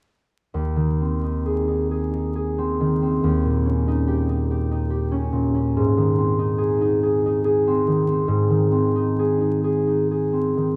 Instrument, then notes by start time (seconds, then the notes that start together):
harp
0.54 D#2
0.76 D#3
1.01 C4
1.23 D#4
1.45 G#4
1.68 D#4
1.91 G#4
2.14 D#4
2.35 G#4
2.58 C4
2.80 D#3
3.02 C4
3.24 D#2
3.45 A#2
3.65 C#4
3.88 D#4
4.08 G4
4.29 D#4
4.51 G4
4.71 D#4
4.90 G4
5.11 C#4
5.32 A#2
5.54 C#4
5.77 G#2
5.97 D#3
6.18 C4
6.39 D#4
6.58 G#4
6.81 D#4
7.03 G#4
7.26 D#4
7.45 G#4
7.67 C4
7.87 D#3
8.08 C4
8.28 G#2
8.50 D#3
8.71 C4
8.96 D#4
9.19 G#4
9.41 D#4
9.64 G#4
9.87 D#4
10.11 G#4
10.32 C4
10.57 D#3